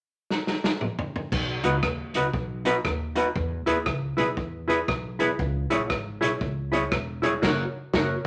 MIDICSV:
0, 0, Header, 1, 4, 480
1, 0, Start_track
1, 0, Key_signature, 5, "major"
1, 0, Tempo, 508475
1, 1248, Time_signature, 4, 2, 24, 8
1, 7804, End_track
2, 0, Start_track
2, 0, Title_t, "Hollow-body jazz guitar"
2, 0, Program_c, 0, 26
2, 1546, Note_on_c, 0, 63, 78
2, 1550, Note_on_c, 0, 66, 90
2, 1558, Note_on_c, 0, 71, 85
2, 1643, Note_off_c, 0, 63, 0
2, 1645, Note_off_c, 0, 66, 0
2, 1649, Note_off_c, 0, 71, 0
2, 2032, Note_on_c, 0, 63, 70
2, 2040, Note_on_c, 0, 66, 73
2, 2047, Note_on_c, 0, 71, 85
2, 2126, Note_off_c, 0, 63, 0
2, 2130, Note_off_c, 0, 66, 0
2, 2133, Note_off_c, 0, 71, 0
2, 2503, Note_on_c, 0, 63, 86
2, 2511, Note_on_c, 0, 66, 98
2, 2514, Note_on_c, 0, 71, 103
2, 2601, Note_off_c, 0, 63, 0
2, 2605, Note_off_c, 0, 66, 0
2, 2607, Note_off_c, 0, 71, 0
2, 2978, Note_on_c, 0, 63, 85
2, 2983, Note_on_c, 0, 66, 94
2, 2995, Note_on_c, 0, 71, 100
2, 3079, Note_off_c, 0, 63, 0
2, 3081, Note_off_c, 0, 66, 0
2, 3087, Note_off_c, 0, 71, 0
2, 3457, Note_on_c, 0, 64, 90
2, 3466, Note_on_c, 0, 68, 95
2, 3467, Note_on_c, 0, 71, 103
2, 3558, Note_off_c, 0, 64, 0
2, 3562, Note_off_c, 0, 68, 0
2, 3563, Note_off_c, 0, 71, 0
2, 3935, Note_on_c, 0, 64, 82
2, 3944, Note_on_c, 0, 68, 88
2, 3945, Note_on_c, 0, 71, 89
2, 4037, Note_off_c, 0, 64, 0
2, 4042, Note_off_c, 0, 68, 0
2, 4042, Note_off_c, 0, 71, 0
2, 4414, Note_on_c, 0, 64, 80
2, 4420, Note_on_c, 0, 68, 90
2, 4429, Note_on_c, 0, 71, 99
2, 4517, Note_off_c, 0, 64, 0
2, 4520, Note_off_c, 0, 68, 0
2, 4524, Note_off_c, 0, 71, 0
2, 4900, Note_on_c, 0, 64, 89
2, 4908, Note_on_c, 0, 68, 101
2, 4913, Note_on_c, 0, 71, 94
2, 5000, Note_off_c, 0, 64, 0
2, 5003, Note_off_c, 0, 68, 0
2, 5006, Note_off_c, 0, 71, 0
2, 5383, Note_on_c, 0, 64, 87
2, 5386, Note_on_c, 0, 68, 85
2, 5395, Note_on_c, 0, 73, 98
2, 5481, Note_off_c, 0, 64, 0
2, 5482, Note_off_c, 0, 68, 0
2, 5487, Note_off_c, 0, 73, 0
2, 5859, Note_on_c, 0, 64, 71
2, 5861, Note_on_c, 0, 68, 82
2, 5866, Note_on_c, 0, 73, 84
2, 5959, Note_off_c, 0, 64, 0
2, 5960, Note_off_c, 0, 68, 0
2, 5963, Note_off_c, 0, 73, 0
2, 6341, Note_on_c, 0, 64, 91
2, 6348, Note_on_c, 0, 68, 89
2, 6356, Note_on_c, 0, 73, 108
2, 6440, Note_off_c, 0, 64, 0
2, 6444, Note_off_c, 0, 68, 0
2, 6448, Note_off_c, 0, 73, 0
2, 6816, Note_on_c, 0, 64, 81
2, 6825, Note_on_c, 0, 68, 92
2, 6830, Note_on_c, 0, 73, 96
2, 6918, Note_off_c, 0, 64, 0
2, 6923, Note_off_c, 0, 68, 0
2, 6925, Note_off_c, 0, 73, 0
2, 7005, Note_on_c, 0, 66, 89
2, 7010, Note_on_c, 0, 70, 97
2, 7017, Note_on_c, 0, 73, 95
2, 7208, Note_off_c, 0, 66, 0
2, 7211, Note_off_c, 0, 70, 0
2, 7215, Note_off_c, 0, 73, 0
2, 7491, Note_on_c, 0, 66, 98
2, 7501, Note_on_c, 0, 70, 94
2, 7507, Note_on_c, 0, 73, 92
2, 7692, Note_off_c, 0, 66, 0
2, 7697, Note_off_c, 0, 70, 0
2, 7700, Note_off_c, 0, 73, 0
2, 7804, End_track
3, 0, Start_track
3, 0, Title_t, "Upright bass"
3, 0, Program_c, 1, 32
3, 1249, Note_on_c, 1, 35, 103
3, 1500, Note_off_c, 1, 35, 0
3, 1541, Note_on_c, 1, 37, 99
3, 1698, Note_off_c, 1, 37, 0
3, 1731, Note_on_c, 1, 39, 90
3, 1981, Note_off_c, 1, 39, 0
3, 2019, Note_on_c, 1, 37, 88
3, 2177, Note_off_c, 1, 37, 0
3, 2206, Note_on_c, 1, 35, 93
3, 2614, Note_off_c, 1, 35, 0
3, 2690, Note_on_c, 1, 39, 89
3, 3096, Note_off_c, 1, 39, 0
3, 3170, Note_on_c, 1, 40, 106
3, 3420, Note_off_c, 1, 40, 0
3, 3457, Note_on_c, 1, 39, 100
3, 3616, Note_off_c, 1, 39, 0
3, 3649, Note_on_c, 1, 37, 88
3, 3900, Note_off_c, 1, 37, 0
3, 3943, Note_on_c, 1, 35, 96
3, 4099, Note_off_c, 1, 35, 0
3, 4127, Note_on_c, 1, 40, 100
3, 4535, Note_off_c, 1, 40, 0
3, 4611, Note_on_c, 1, 35, 97
3, 5017, Note_off_c, 1, 35, 0
3, 5091, Note_on_c, 1, 37, 117
3, 5341, Note_off_c, 1, 37, 0
3, 5386, Note_on_c, 1, 34, 89
3, 5541, Note_off_c, 1, 34, 0
3, 5575, Note_on_c, 1, 32, 85
3, 5823, Note_off_c, 1, 32, 0
3, 5872, Note_on_c, 1, 35, 92
3, 6024, Note_off_c, 1, 35, 0
3, 6051, Note_on_c, 1, 37, 91
3, 6457, Note_off_c, 1, 37, 0
3, 6532, Note_on_c, 1, 28, 89
3, 6938, Note_off_c, 1, 28, 0
3, 7015, Note_on_c, 1, 30, 107
3, 7213, Note_off_c, 1, 30, 0
3, 7495, Note_on_c, 1, 30, 96
3, 7694, Note_off_c, 1, 30, 0
3, 7804, End_track
4, 0, Start_track
4, 0, Title_t, "Drums"
4, 287, Note_on_c, 9, 38, 54
4, 381, Note_off_c, 9, 38, 0
4, 446, Note_on_c, 9, 38, 56
4, 541, Note_off_c, 9, 38, 0
4, 605, Note_on_c, 9, 38, 76
4, 700, Note_off_c, 9, 38, 0
4, 765, Note_on_c, 9, 45, 69
4, 859, Note_off_c, 9, 45, 0
4, 931, Note_on_c, 9, 43, 98
4, 1026, Note_off_c, 9, 43, 0
4, 1092, Note_on_c, 9, 43, 88
4, 1187, Note_off_c, 9, 43, 0
4, 1246, Note_on_c, 9, 36, 115
4, 1248, Note_on_c, 9, 49, 86
4, 1341, Note_off_c, 9, 36, 0
4, 1342, Note_off_c, 9, 49, 0
4, 1546, Note_on_c, 9, 42, 94
4, 1640, Note_off_c, 9, 42, 0
4, 1726, Note_on_c, 9, 36, 105
4, 1726, Note_on_c, 9, 37, 108
4, 1820, Note_off_c, 9, 37, 0
4, 1821, Note_off_c, 9, 36, 0
4, 2023, Note_on_c, 9, 42, 90
4, 2118, Note_off_c, 9, 42, 0
4, 2205, Note_on_c, 9, 36, 112
4, 2299, Note_off_c, 9, 36, 0
4, 2505, Note_on_c, 9, 42, 86
4, 2599, Note_off_c, 9, 42, 0
4, 2687, Note_on_c, 9, 36, 101
4, 2689, Note_on_c, 9, 37, 110
4, 2781, Note_off_c, 9, 36, 0
4, 2783, Note_off_c, 9, 37, 0
4, 2979, Note_on_c, 9, 42, 85
4, 3074, Note_off_c, 9, 42, 0
4, 3168, Note_on_c, 9, 36, 109
4, 3263, Note_off_c, 9, 36, 0
4, 3463, Note_on_c, 9, 42, 89
4, 3557, Note_off_c, 9, 42, 0
4, 3644, Note_on_c, 9, 37, 108
4, 3647, Note_on_c, 9, 36, 103
4, 3738, Note_off_c, 9, 37, 0
4, 3741, Note_off_c, 9, 36, 0
4, 3947, Note_on_c, 9, 42, 87
4, 4041, Note_off_c, 9, 42, 0
4, 4126, Note_on_c, 9, 36, 104
4, 4221, Note_off_c, 9, 36, 0
4, 4434, Note_on_c, 9, 42, 86
4, 4528, Note_off_c, 9, 42, 0
4, 4609, Note_on_c, 9, 36, 111
4, 4612, Note_on_c, 9, 37, 107
4, 4703, Note_off_c, 9, 36, 0
4, 4706, Note_off_c, 9, 37, 0
4, 4905, Note_on_c, 9, 42, 84
4, 5000, Note_off_c, 9, 42, 0
4, 5090, Note_on_c, 9, 36, 109
4, 5184, Note_off_c, 9, 36, 0
4, 5385, Note_on_c, 9, 42, 88
4, 5479, Note_off_c, 9, 42, 0
4, 5568, Note_on_c, 9, 37, 100
4, 5570, Note_on_c, 9, 36, 106
4, 5663, Note_off_c, 9, 37, 0
4, 5664, Note_off_c, 9, 36, 0
4, 5875, Note_on_c, 9, 42, 97
4, 5969, Note_off_c, 9, 42, 0
4, 6051, Note_on_c, 9, 36, 103
4, 6146, Note_off_c, 9, 36, 0
4, 6356, Note_on_c, 9, 42, 87
4, 6450, Note_off_c, 9, 42, 0
4, 6530, Note_on_c, 9, 37, 108
4, 6531, Note_on_c, 9, 36, 108
4, 6625, Note_off_c, 9, 36, 0
4, 6625, Note_off_c, 9, 37, 0
4, 6828, Note_on_c, 9, 42, 88
4, 6923, Note_off_c, 9, 42, 0
4, 7012, Note_on_c, 9, 36, 100
4, 7014, Note_on_c, 9, 38, 104
4, 7014, Note_on_c, 9, 49, 79
4, 7106, Note_off_c, 9, 36, 0
4, 7109, Note_off_c, 9, 38, 0
4, 7109, Note_off_c, 9, 49, 0
4, 7491, Note_on_c, 9, 36, 101
4, 7491, Note_on_c, 9, 38, 98
4, 7585, Note_off_c, 9, 36, 0
4, 7586, Note_off_c, 9, 38, 0
4, 7804, End_track
0, 0, End_of_file